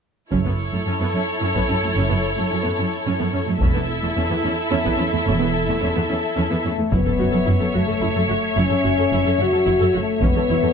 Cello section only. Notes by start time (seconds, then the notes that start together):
0.32 F#2
0.45 F#2
0.73 F#2
0.86 F#2
1.00 F#2
1.13 F#2
1.41 F#2
1.55 F#2
1.69 F#2
1.83 F#2
1.96 F#2
2.10 F#2
2.38 F#2
2.51 F#2
2.65 F#2
2.79 F#2
3.07 F#2
3.20 F#2
3.34 F#2
3.47 F#2
3.61 E2
3.75 E2
4.03 E2
4.16 E2
4.30 E2
4.44 E2
4.71 E2
4.86 E2
4.99 E2
5.13 E2
5.26 E2
5.40 E2
5.68 E2
5.82 E2
5.96 E2
6.09 E2
6.36 E2
6.51 E2
6.64 E2
6.77 E2
6.90 F#2
7.04 F#2
7.18 F#2
7.32 F#2
7.46 F#2
7.59 F#2
7.73 F#2
7.87 F#2
8.00 F#2
8.15 F#2
8.28 F#2
8.56 F#2
8.69 F#2
8.83 F#2
8.97 F#2
9.10 F#2
9.24 F#2
9.38 F#2
9.52 F#2
9.66 F#2
9.80 F#2
9.94 F#2
10.20 E2
10.35 E2
10.49 E2
10.62 E2